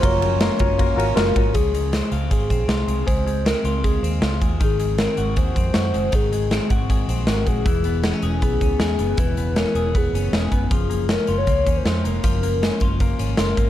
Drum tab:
RD |xxxxxxxx|--------|--------|--------|
HH |--------|xxxxxxxx|xxxxxxxx|xxxxxxxx|
SD |--o---o-|--o---o-|--o---o-|--o---o-|
BD |o--oo--o|o---oo--|o---o--o|o---oo--|

RD |--------|--------|--------|--------|
HH |xxxxxxxx|xxxxxxxx|xxxxxxxx|xxxxxxxx|
SD |--o---o-|--o---o-|--o---o-|--o---o-|
BD |o--oo--o|o---oo--|o---o--o|o---oo--|

RD |--------|
HH |xxxxxxxx|
SD |--o---o-|
BD |o--oo--o|